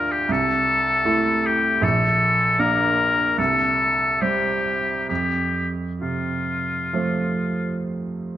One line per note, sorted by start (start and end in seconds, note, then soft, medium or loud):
0.00 0.25 D2 medium
0.00 0.25 D4 soft
0.00 0.25 F4 soft
0.00 0.13 A#4 medium
0.12 0.33 G4 medium
0.29 1.79 C2 medium
0.29 1.48 A4 medium
1.05 1.79 A3 soft
1.05 1.79 E4 soft
1.46 1.85 G4 medium
1.81 3.34 A#1 medium
1.81 2.61 A4 medium
2.59 3.34 A#3 soft
2.59 3.34 D4 soft
2.59 3.38 A#4 medium
3.38 5.05 C2 medium
3.38 4.23 A4 medium
4.22 5.06 G3 soft
4.22 5.06 C4 soft
4.22 5.08 G4 medium
5.09 8.37 F2 soft
5.09 5.69 G4 medium
6.01 7.50 C3 soft
6.01 7.83 F4 soft
6.93 8.37 F3 soft
6.93 8.37 A3 soft
6.93 8.37 C4 soft